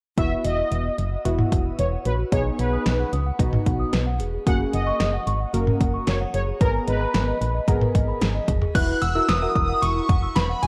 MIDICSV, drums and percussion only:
0, 0, Header, 1, 2, 480
1, 0, Start_track
1, 0, Tempo, 535714
1, 161, Time_signature, 4, 2, 24, 8
1, 9560, End_track
2, 0, Start_track
2, 0, Title_t, "Drums"
2, 161, Note_on_c, 9, 36, 112
2, 161, Note_on_c, 9, 42, 72
2, 250, Note_off_c, 9, 36, 0
2, 251, Note_off_c, 9, 42, 0
2, 401, Note_on_c, 9, 42, 66
2, 490, Note_off_c, 9, 42, 0
2, 643, Note_on_c, 9, 42, 65
2, 732, Note_off_c, 9, 42, 0
2, 882, Note_on_c, 9, 42, 57
2, 972, Note_off_c, 9, 42, 0
2, 1123, Note_on_c, 9, 42, 85
2, 1212, Note_off_c, 9, 42, 0
2, 1241, Note_on_c, 9, 47, 93
2, 1331, Note_off_c, 9, 47, 0
2, 1362, Note_on_c, 9, 36, 87
2, 1363, Note_on_c, 9, 42, 64
2, 1452, Note_off_c, 9, 36, 0
2, 1452, Note_off_c, 9, 42, 0
2, 1601, Note_on_c, 9, 42, 75
2, 1690, Note_off_c, 9, 42, 0
2, 1840, Note_on_c, 9, 42, 67
2, 1930, Note_off_c, 9, 42, 0
2, 2081, Note_on_c, 9, 36, 107
2, 2081, Note_on_c, 9, 42, 75
2, 2170, Note_off_c, 9, 36, 0
2, 2171, Note_off_c, 9, 42, 0
2, 2320, Note_on_c, 9, 42, 63
2, 2410, Note_off_c, 9, 42, 0
2, 2559, Note_on_c, 9, 38, 101
2, 2562, Note_on_c, 9, 42, 69
2, 2649, Note_off_c, 9, 38, 0
2, 2652, Note_off_c, 9, 42, 0
2, 2802, Note_on_c, 9, 42, 55
2, 2892, Note_off_c, 9, 42, 0
2, 3039, Note_on_c, 9, 36, 85
2, 3042, Note_on_c, 9, 42, 89
2, 3128, Note_off_c, 9, 36, 0
2, 3132, Note_off_c, 9, 42, 0
2, 3161, Note_on_c, 9, 47, 94
2, 3251, Note_off_c, 9, 47, 0
2, 3283, Note_on_c, 9, 36, 89
2, 3283, Note_on_c, 9, 42, 66
2, 3372, Note_off_c, 9, 36, 0
2, 3372, Note_off_c, 9, 42, 0
2, 3521, Note_on_c, 9, 42, 72
2, 3524, Note_on_c, 9, 38, 111
2, 3610, Note_off_c, 9, 42, 0
2, 3613, Note_off_c, 9, 38, 0
2, 3761, Note_on_c, 9, 42, 67
2, 3850, Note_off_c, 9, 42, 0
2, 4001, Note_on_c, 9, 36, 107
2, 4001, Note_on_c, 9, 42, 75
2, 4091, Note_off_c, 9, 36, 0
2, 4091, Note_off_c, 9, 42, 0
2, 4241, Note_on_c, 9, 42, 66
2, 4331, Note_off_c, 9, 42, 0
2, 4480, Note_on_c, 9, 38, 100
2, 4483, Note_on_c, 9, 42, 67
2, 4570, Note_off_c, 9, 38, 0
2, 4572, Note_off_c, 9, 42, 0
2, 4723, Note_on_c, 9, 42, 56
2, 4812, Note_off_c, 9, 42, 0
2, 4963, Note_on_c, 9, 42, 88
2, 5053, Note_off_c, 9, 42, 0
2, 5082, Note_on_c, 9, 47, 92
2, 5172, Note_off_c, 9, 47, 0
2, 5202, Note_on_c, 9, 36, 87
2, 5202, Note_on_c, 9, 42, 64
2, 5292, Note_off_c, 9, 36, 0
2, 5292, Note_off_c, 9, 42, 0
2, 5440, Note_on_c, 9, 42, 74
2, 5443, Note_on_c, 9, 38, 112
2, 5530, Note_off_c, 9, 42, 0
2, 5532, Note_off_c, 9, 38, 0
2, 5681, Note_on_c, 9, 42, 68
2, 5770, Note_off_c, 9, 42, 0
2, 5921, Note_on_c, 9, 36, 110
2, 5921, Note_on_c, 9, 42, 75
2, 6010, Note_off_c, 9, 36, 0
2, 6010, Note_off_c, 9, 42, 0
2, 6160, Note_on_c, 9, 42, 64
2, 6250, Note_off_c, 9, 42, 0
2, 6400, Note_on_c, 9, 38, 102
2, 6403, Note_on_c, 9, 42, 64
2, 6490, Note_off_c, 9, 38, 0
2, 6492, Note_off_c, 9, 42, 0
2, 6644, Note_on_c, 9, 42, 58
2, 6733, Note_off_c, 9, 42, 0
2, 6879, Note_on_c, 9, 36, 85
2, 6883, Note_on_c, 9, 42, 85
2, 6969, Note_off_c, 9, 36, 0
2, 6973, Note_off_c, 9, 42, 0
2, 7002, Note_on_c, 9, 47, 92
2, 7091, Note_off_c, 9, 47, 0
2, 7123, Note_on_c, 9, 36, 91
2, 7123, Note_on_c, 9, 42, 65
2, 7212, Note_off_c, 9, 36, 0
2, 7213, Note_off_c, 9, 42, 0
2, 7361, Note_on_c, 9, 42, 75
2, 7364, Note_on_c, 9, 38, 109
2, 7451, Note_off_c, 9, 42, 0
2, 7454, Note_off_c, 9, 38, 0
2, 7600, Note_on_c, 9, 36, 79
2, 7601, Note_on_c, 9, 42, 69
2, 7604, Note_on_c, 9, 45, 92
2, 7689, Note_off_c, 9, 36, 0
2, 7690, Note_off_c, 9, 42, 0
2, 7693, Note_off_c, 9, 45, 0
2, 7721, Note_on_c, 9, 45, 94
2, 7811, Note_off_c, 9, 45, 0
2, 7841, Note_on_c, 9, 36, 112
2, 7842, Note_on_c, 9, 42, 77
2, 7842, Note_on_c, 9, 49, 90
2, 7931, Note_off_c, 9, 36, 0
2, 7931, Note_off_c, 9, 42, 0
2, 7931, Note_off_c, 9, 49, 0
2, 8080, Note_on_c, 9, 42, 68
2, 8170, Note_off_c, 9, 42, 0
2, 8321, Note_on_c, 9, 38, 107
2, 8323, Note_on_c, 9, 42, 69
2, 8411, Note_off_c, 9, 38, 0
2, 8413, Note_off_c, 9, 42, 0
2, 8562, Note_on_c, 9, 36, 86
2, 8563, Note_on_c, 9, 42, 58
2, 8651, Note_off_c, 9, 36, 0
2, 8653, Note_off_c, 9, 42, 0
2, 8804, Note_on_c, 9, 42, 87
2, 8894, Note_off_c, 9, 42, 0
2, 9042, Note_on_c, 9, 45, 93
2, 9043, Note_on_c, 9, 36, 91
2, 9044, Note_on_c, 9, 42, 68
2, 9132, Note_off_c, 9, 45, 0
2, 9133, Note_off_c, 9, 36, 0
2, 9133, Note_off_c, 9, 42, 0
2, 9281, Note_on_c, 9, 42, 75
2, 9284, Note_on_c, 9, 38, 114
2, 9371, Note_off_c, 9, 42, 0
2, 9374, Note_off_c, 9, 38, 0
2, 9521, Note_on_c, 9, 42, 72
2, 9560, Note_off_c, 9, 42, 0
2, 9560, End_track
0, 0, End_of_file